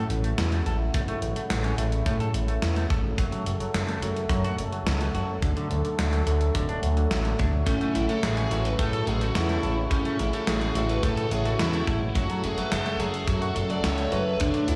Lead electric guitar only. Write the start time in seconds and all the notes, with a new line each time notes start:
7.67 C#4
7.95 E4
8.09 A4
8.23 G#4
8.51 F#4
8.65 B4
8.79 A4
9.07 G#4
9.21 F#4
9.35 E4
9.91 C#4
10.20 E4
10.34 A4
10.48 G#4
10.75 F#4
10.89 B4
11.04 A4
11.32 G#4
11.46 F#4
11.60 E4
12.16 F#4
12.44 G#4
12.58 B4
12.72 A4
13.00 G#4
13.28 F#4
13.56 A4
13.70 D5
13.84 C#5
14.12 B4
14.40 D4
14.68 E4